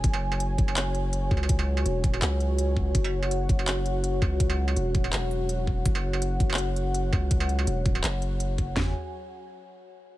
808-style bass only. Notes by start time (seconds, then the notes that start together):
0.04 F#1
0.58 F#1
1.31 C#2
1.86 E1
2.22 C#2
2.95 F#1
3.49 F#1
4.22 C#2
4.76 E1
5.13 E1
5.86 F#1
6.40 F#1
7.13 C#2
7.67 E1
8.03 F#1
8.76 F#1